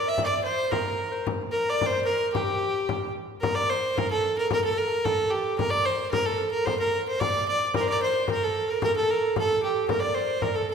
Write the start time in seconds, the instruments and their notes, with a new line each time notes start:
Already playing: harp A#4 C5 D5, fiddle D5
0.07 recorder E5, fiddle E5, harp E5
0.18 frame drum
0.24 fiddle D5, recorder D5, harp D5
0.44 fiddle C5, recorder C5, harp C5
0.69 recorder A#4, fiddle A#4, frame drum
0.73 harp A#4
1.12 recorder C5, harp C5
1.27 frame drum
1.51 recorder A#4, fiddle A#4, harp A#4
1.70 fiddle D5, harp D5, recorder D5
1.81 frame drum
1.86 fiddle C5, harp C5, recorder C5
2.04 fiddle A#4, recorder A#4, harp A#4
2.33 fiddle G4, recorder G4, frame drum
2.63 frame drum
2.89 frame drum
3.17 frame drum
3.41 fiddle A#4, harp A#4, frame drum
3.55 fiddle D5, harp D5
3.69 fiddle C5, harp C5
3.95 harp A#4, fiddle A#4, frame drum
4.09 harp A4, fiddle A4
4.37 harp A#4, fiddle A#4
4.50 harp A#4, fiddle A#4, frame drum
4.64 fiddle A4, harp A4
4.77 harp A#4, fiddle A#4
5.04 fiddle A4, harp A4, frame drum
5.30 fiddle G4, harp G4
5.58 fiddle A#4, harp A#4, frame drum
5.70 fiddle D5, harp D5
5.85 fiddle C5, harp C5
6.11 fiddle A#4, harp A#4, frame drum
6.26 fiddle A4, harp A4
6.51 fiddle A#4, harp A#4
6.65 fiddle C5, harp C5, frame drum
6.79 fiddle A#4, harp A#4
7.08 fiddle C5, harp C5
7.20 fiddle D5, harp D5, frame drum
7.47 harp D5, fiddle D5, frame drum
7.73 harp A#4, recorder A#4, fiddle A#4, frame drum
7.80 harp A#4, recorder A#4, fiddle A#4 C5
7.86 harp D5, recorder D5, fiddle D5
8.01 recorder C5, fiddle C5
8.27 recorder A#4, harp A#4, fiddle A#4, frame drum
8.42 harp A4, fiddle A4
8.67 harp A#4, recorder A#4, fiddle A#4
8.80 harp A#4, recorder A#4, fiddle A#4, frame drum
8.95 harp A4, fiddle A4, recorder A4
9.08 harp A#4, fiddle A#4
9.16 harp A#4
9.23 harp A#4
9.36 harp A4, recorder A4, fiddle A4, frame drum
9.54 recorder A4
9.61 recorder G4, fiddle G4, harp G4
9.88 fiddle A#4, recorder A#4, harp A#4, frame drum
10.00 fiddle D5, recorder D5
10.04 harp D5
10.14 fiddle C5, harp C5
10.41 recorder A#4, fiddle A#4, harp A#4, frame drum
10.55 recorder A4, fiddle A4, harp A4
10.68 recorder A4, fiddle A4, harp A4